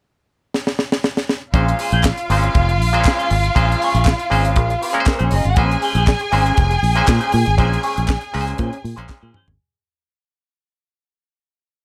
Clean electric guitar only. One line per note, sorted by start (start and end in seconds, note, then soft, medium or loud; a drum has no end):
1.54 1.73 C#4 medium
1.54 1.67 G#4 medium
1.54 1.65 C5 medium
1.66 muted clean electric guitar stroke medium
1.79 1.93 C#4 medium
1.79 1.92 G#4 medium
1.79 1.92 C5 medium
1.93 2.03 C#4 medium
1.93 2.04 G#4 medium
1.93 2.04 C5 medium
2.04 muted clean electric guitar stroke soft
2.18 muted clean electric guitar stroke soft
2.29 2.48 C#4 medium
2.29 2.43 G#4 medium
2.29 2.42 C5 medium
2.43 muted clean electric guitar stroke soft
2.55 muted clean electric guitar stroke soft
2.69 muted clean electric guitar stroke medium
3.19 3.29 C#4 medium
3.19 3.30 G#4 medium
3.19 3.31 C5 medium
3.31 muted clean electric guitar stroke soft
3.43 muted clean electric guitar stroke soft
3.56 3.75 C#4 medium
3.56 3.71 G#4 loud
3.56 3.69 C5 medium
3.70 muted clean electric guitar stroke soft
3.82 3.96 C#4 medium
3.82 3.95 G#4 medium
3.82 3.94 C#5 medium
3.95 4.07 C#4 medium
3.95 4.07 G#4 medium
3.95 4.08 C#5 medium
4.08 muted clean electric guitar stroke soft
4.19 muted clean electric guitar stroke soft
4.30 4.50 C#4 medium
4.30 4.45 G#4 medium
4.30 4.43 C5 medium
4.45 muted clean electric guitar stroke medium
4.56 muted clean electric guitar stroke soft
4.70 muted clean electric guitar stroke soft
4.81 5.02 C#4 medium
4.81 4.96 G#4 medium
4.81 4.94 C5 medium
4.95 muted clean electric guitar stroke soft
5.19 5.30 C#4 medium
5.19 5.31 G#4 medium
5.19 5.32 C5 medium
5.31 5.47 C#4 medium
5.31 5.45 G#4 medium
5.31 5.44 C5 medium
5.45 muted clean electric guitar stroke soft
5.56 5.77 C#4 medium
5.56 5.70 G#4 medium
5.56 5.69 C5 medium
5.70 muted clean electric guitar stroke soft
5.82 5.96 C#4 medium
5.82 5.95 G#4 medium
5.82 5.94 C5 medium
5.95 6.06 C#4 medium
5.95 6.07 G#4 medium
5.95 6.07 C5 medium
6.07 muted clean electric guitar stroke soft
6.21 muted clean electric guitar stroke soft
6.32 6.51 C#4 medium
6.32 6.46 G#4 medium
6.32 6.45 C5 medium
6.46 muted clean electric guitar stroke soft
6.58 muted clean electric guitar stroke soft
6.71 muted clean electric guitar stroke soft
6.95 muted clean electric guitar stroke soft
7.20 7.32 C#4 medium
7.20 7.33 G#4 medium
7.20 7.33 C5 medium
7.33 muted clean electric guitar stroke soft
7.46 muted clean electric guitar stroke medium
7.57 7.77 C#4 medium
7.57 7.71 G#4 medium
7.57 7.70 C5 medium
7.71 muted clean electric guitar stroke soft
7.82 7.96 C#4 medium
7.82 7.96 G#4 medium
7.82 7.95 C#5 medium
7.96 8.06 C#4 medium
7.96 8.07 G#4 medium
7.96 8.09 C#5 medium
8.21 muted clean electric guitar stroke soft
8.33 8.52 C#4 medium
8.33 8.45 G#4 medium
8.33 8.44 C5 medium
8.46 muted clean electric guitar stroke soft
8.57 8.77 C#4 medium
8.57 8.71 G#4 medium
8.57 8.70 C5 loud
8.71 muted clean electric guitar stroke soft
8.82 muted clean electric guitar stroke soft
8.96 9.08 C#4 medium
8.96 9.09 G#4 medium
8.96 9.10 C5 medium
9.09 muted clean electric guitar stroke soft
9.22 9.33 C#4 medium
9.22 9.34 G#4 medium
9.22 9.35 C5 medium
9.35 9.50 C#4 medium
9.35 9.48 G#4 medium
9.35 9.46 C5 medium
9.48 muted clean electric guitar stroke soft